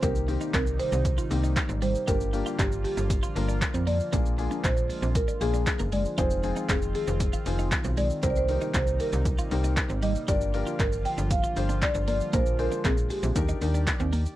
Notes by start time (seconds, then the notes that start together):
0.02 C2 C3 D#3 G3 A#3 C4 D#4 G4 A#4, kick, closed hi-hat, shaker
0.15 shaker
0.28 A#3 C4 D#4 G4, muted clean electric guitar stroke, open hi-hat, shaker
0.41 D#4, shaker
0.54 C2 C4 A#4, kick, clap, closed hi-hat, shaker
0.67 shaker
0.79 C5, muted clean electric guitar stroke, open hi-hat, shaker
0.92 C2 C4, shaker
1.05 kick, closed hi-hat, shaker
1.18 F4, shaker
1.30 C2 A#3 C4 D#4 G4, muted clean electric guitar stroke, open hi-hat, shaker
1.44 D#4, shaker
1.56 muted clean electric guitar stroke, kick, clap, closed hi-hat, shaker
1.69 G#1 C4, shaker
1.82 G3 C5, open hi-hat, shaker
1.95 shaker
2.07 G1 D3 F3 A#3 D4 F4 G4 A#4, kick, closed hi-hat, shaker
2.21 shaker
2.33 A#3 D4 F4 G4, muted clean electric guitar stroke, open hi-hat, shaker
2.46 F4, shaker
2.59 G1 D4 G4, kick, clap, closed hi-hat, shaker
2.72 shaker
2.84 G4, muted clean electric guitar stroke, open hi-hat, shaker
2.97 G1 D4, shaker
3.10 kick, closed hi-hat, shaker
3.23 F4, shaker
3.36 G1 A#3 D4 F4 A#4, muted clean electric guitar stroke, open hi-hat, shaker
3.49 D4, shaker
3.61 muted clean electric guitar stroke, kick, clap, closed hi-hat, shaker
3.74 F2 C4, shaker
3.87 A#3 D5, open hi-hat, shaker
4.00 shaker
4.12 A#1 G#3 A#3 D4 F4 G#4, kick, closed hi-hat, shaker
4.26 shaker
4.38 A#3 D4 F4 G#4, muted clean electric guitar stroke, open hi-hat, shaker
4.51 D4, shaker
4.64 A#1 C4 C5, kick, clap, closed hi-hat, shaker
4.77 shaker
4.90 muted clean electric guitar stroke, open hi-hat, shaker
5.02 A#1 C4, shaker
5.15 A#4, kick, closed hi-hat, shaker
5.28 D4, shaker
5.41 A#1 A#3 D4 F4 G#4, muted clean electric guitar stroke, open hi-hat, shaker
5.54 D4, shaker
5.67 muted clean electric guitar stroke, kick, clap, closed hi-hat, shaker
5.79 F#1 A#3, shaker
5.92 G#3 D5, open hi-hat, shaker
6.05 shaker
6.18 F1 D#3 C4 D#4 F4 G#4 C5, kick, closed hi-hat, shaker
6.31 shaker
6.43 C4 D#4 F4 G#4, muted clean electric guitar stroke, open hi-hat, shaker
6.56 D#4, shaker
6.69 F1 C4 G#4, kick, clap, closed hi-hat, shaker
6.82 shaker
6.95 G#4, muted clean electric guitar stroke, open hi-hat, shaker
7.07 F1 C4, shaker
7.20 kick, closed hi-hat, shaker
7.33 F4, shaker
7.46 F1 C4 D#4 F4 G#4, muted clean electric guitar stroke, open hi-hat, shaker
7.59 D#4, shaker
7.72 muted clean electric guitar stroke, kick, clap, closed hi-hat, shaker
7.84 B1 C4, shaker
7.97 G#3 D5, open hi-hat, shaker
8.10 shaker
8.23 C2 C3 G3 A#3 C4 D#4 G4 A#4 C5, kick, closed hi-hat, shaker
8.30 D5
8.36 C5, shaker
8.49 C4 D#4 G4 A#4, muted clean electric guitar stroke, open hi-hat, shaker
8.61 D#4, shaker
8.74 C2 C4 C5, kick, clap, closed hi-hat, shaker
8.87 shaker
9.00 A#4, muted clean electric guitar stroke, open hi-hat, shaker
9.13 C2 C4, shaker
9.25 kick, closed hi-hat, shaker
9.38 F4, shaker
9.51 C2 C4 D#4 G4 A#4, muted clean electric guitar stroke, open hi-hat, shaker
9.64 D#4, shaker
9.77 muted clean electric guitar stroke, kick, clap, closed hi-hat, shaker
9.90 G#1 C4, shaker
10.02 G3 D#5, open hi-hat, shaker
10.15 shaker
10.28 G1 D3 F3 D4 F4 G4 A#4 D5, kick, closed hi-hat, shaker
10.41 shaker
10.54 D4 F4 G4 A#4, muted clean electric guitar stroke, open hi-hat, shaker
10.67 F4, shaker
10.79 G1 D4 A#4, kick, clap, closed hi-hat, shaker
10.93 shaker
11.05 G5, muted clean electric guitar stroke, open hi-hat, shaker
11.18 G1 D4, shaker
11.31 F5, kick, closed hi-hat, shaker
11.44 F4, shaker
11.56 G1 D4 F4 G4 C5, muted clean electric guitar stroke, open hi-hat, shaker
11.69 D4, shaker
11.82 D5, muted clean electric guitar stroke, kick, clap, closed hi-hat, shaker
11.95 G1 C4, shaker
12.08 A#3 D5, open hi-hat, shaker
12.21 shaker
12.33 A#1 G#3 A#3 D4 F4 G#4 A#4 C5, kick, closed hi-hat, shaker
12.46 shaker
12.59 D4 F4 G#4 A#4 C5, muted clean electric guitar stroke, open hi-hat, shaker
12.72 D4, shaker
12.85 A#1 C4 G#4, kick, clap, closed hi-hat, shaker
12.98 shaker
13.10 G4, muted clean electric guitar stroke, open hi-hat, shaker
13.23 A#1 C4, shaker
13.36 D#2 D#3 G3 D4 D#4 G4 A#4 D5, kick, closed hi-hat, shaker
13.49 D#4, shaker
13.61 D#2 D4 D#4 G4 A#4, muted clean electric guitar stroke, open hi-hat, shaker
13.74 D4, shaker
13.87 muted clean electric guitar stroke, kick, clap, closed hi-hat, shaker
14.00 D#2 C4, shaker
14.13 A#3, open hi-hat, shaker
14.26 shaker